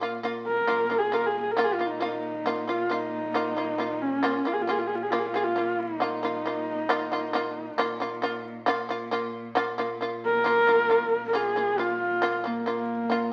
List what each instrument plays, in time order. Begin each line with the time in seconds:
Already playing: cello A#2
0.01 shamisen A#3 F4
0.23 shamisen A#3 F4
0.47 horsehead fiddle A#4
0.67 cello A#2, shamisen A#3 F4
0.90 shamisen A#3 F4
0.98 horsehead fiddle G#4
1.12 shamisen A#3 F4, horsehead fiddle A#4
1.26 horsehead fiddle G#4
1.41 horsehead fiddle G#4
1.51 horsehead fiddle A#4
1.57 shamisen A#3 F4
1.64 horsehead fiddle G#4
1.74 horsehead fiddle F4
1.79 shamisen A#3 F4
1.87 horsehead fiddle D#4
1.99 shamisen A#3 F4, horsehead fiddle F4
2.06 horsehead fiddle D#4
2.46 shamisen A#3 F4
2.67 shamisen A#3 F4, horsehead fiddle F4
2.90 shamisen A#3 F4, horsehead fiddle D#4
3.34 shamisen A#3 F4
3.57 shamisen A#3 F4
3.78 shamisen A#3 F4
4.02 horsehead fiddle C#4
4.23 shamisen A#3 F4
4.45 shamisen A#3 F4, horsehead fiddle F4
4.54 horsehead fiddle G#4
4.62 horsehead fiddle F4
4.67 shamisen A#3 F4, horsehead fiddle G#4
4.79 horsehead fiddle F4
4.87 horsehead fiddle G#4
4.95 horsehead fiddle F4
5.02 horsehead fiddle G#4
5.11 shamisen A#3 F4, horsehead fiddle F4
5.19 horsehead fiddle G#4
5.26 horsehead fiddle F4
5.34 shamisen A#3 F4, horsehead fiddle G#4
5.44 horsehead fiddle F4
5.56 shamisen A#3 F4
5.80 horsehead fiddle D#4
6.00 shamisen A#3 F4
6.23 shamisen A#3 F4
6.45 shamisen A#3 F4
6.89 shamisen A#3 F4
7.12 shamisen A#3 F4
7.33 shamisen A#3 F4
7.78 cello A#2, shamisen A#3 F4
8.00 shamisen A#3 F4
8.22 shamisen A#3 F4
8.66 shamisen A#3 F4
8.89 shamisen A#3 F4
9.11 shamisen A#3 F4
9.55 shamisen A#3 F4
9.78 shamisen A#3 F4
10.01 shamisen A#3 F4
10.25 horsehead fiddle A#4
10.44 shamisen A#3 F4
10.67 shamisen A#3 F4
10.90 shamisen A#3 F4
11.28 horsehead fiddle A#4
11.33 shamisen A#3 F4, horsehead fiddle G#4
11.56 shamisen A#3 F4
11.78 shamisen A#3 F4, horsehead fiddle F4
12.22 shamisen A#3 F4
12.44 shamisen A#3 F4, horsehead fiddle A#3
12.66 shamisen A#3 F4
13.10 shamisen A#3 F4